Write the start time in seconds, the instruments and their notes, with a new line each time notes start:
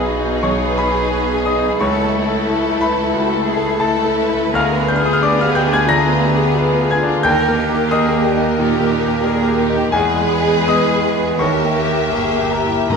Already playing: grand piano B1 B3 B4 D#5 B5 D#6, double bass section B1, viola section B3, violin section D#4 G#4
0.00 grand piano G#4
0.07 cello section F#4
0.20 grand piano D#4
0.43 grand piano B1 C#5 C#6, cello section G#4
0.65 grand piano B3
0.78 grand piano B4 B5
0.90 grand piano G#4
1.12 grand piano B4
1.34 grand piano G#4
1.46 grand piano D#5 D#6
1.59 grand piano D#4
1.79 double bass section C#2, grand piano C#2 C#5 C#6, viola section A3, violin section E4 A4, cello section A4
2.04 grand piano A3
2.13 cello section E4
2.29 grand piano A4
2.50 grand piano E4
2.70 grand piano A4
2.81 grand piano B4 B5
2.92 grand piano E4
3.12 grand piano C#2, cello section F#4
3.36 grand piano A3
3.44 cello section G#4
3.57 grand piano A4
3.78 viola section A3, violin section E4 A4, grand piano E4 A4 A5, cello section A4
4.04 grand piano A4
4.15 cello section B4
4.29 grand piano E4
4.53 grand piano D2 F5 F6, double bass section D2, violin section G#3 G#4, viola section B3, cello section A#4
4.73 violin section B3
4.77 grand piano B3
4.88 violin section D4, cello section G#4, grand piano G6
4.96 grand piano F6
5.00 grand piano G#4
5.06 violin section F4, grand piano D#6
5.13 grand piano F6
5.21 violin section D4, cello section G4, grand piano B4 D5 D6
5.40 violin section B3, grand piano F5 F6
5.44 grand piano G#4
5.55 violin section G#3, grand piano G5 G6
5.67 grand piano D4
5.72 violin section B3, grand piano G#5 G#6
5.88 grand piano D3 A#5 A#6, violin section D4, cello section F4
6.07 grand piano B3, violin section F4
6.22 violin section D4, cello section G4
6.34 grand piano G#4
6.42 violin section B3
6.56 violin section G#3, cello section F4, grand piano B4
6.75 violin section B3
6.81 grand piano G#4
6.91 violin section D4, grand piano G#5 G#6
7.03 grand piano D4
7.09 violin section F4
7.23 grand piano D#2 G5 G6, double bass section D#2, violin section G3 A#4, viola section A#3, cello section A#4
7.41 violin section A#3
7.49 grand piano A#3
7.57 violin section D#4, cello section G4
7.69 grand piano G4
7.75 violin section G4
7.90 violin section D#4, cello section G#4, grand piano A#4 D#5 D#6
8.09 violin section A#3
8.17 grand piano G4
8.24 violin section G3, cello section G4
8.36 grand piano D#4
8.42 violin section A#3
8.58 grand piano A#2, violin section D#4, cello section G4
8.76 violin section G4
8.81 grand piano A#3
8.93 violin section D#4
9.03 grand piano G4
9.09 violin section A#3
9.24 violin section G3, cello section G#4, grand piano A#4
9.42 violin section A#3
9.47 grand piano G4
9.59 violin section D#4, cello section G4
9.70 grand piano D#4
9.77 violin section G4
9.92 grand piano E2 G#4 G#5, double bass section E2, viola section G#3, cello section G#4, violin section G#4 B4
10.16 grand piano G#3
10.43 grand piano G#4
10.67 grand piano B3 D#5 D#6
10.93 grand piano G#4
11.16 grand piano B3
11.38 double bass section D#2, grand piano D#2 C#5 C#6, viola section A#3, violin section G4 E5, cello section A#4
11.64 grand piano A#3
11.89 grand piano G4
12.12 double bass section G1, cello section G#4, grand piano A#4
12.41 grand piano G4
12.50 cello section G4, grand piano A#4 A#5
12.66 grand piano E4
12.90 double bass section G#1, timpani G#2, grand piano G#2 A#4 A#5, viola section B3, cello section D#4, violin section G#4 D#5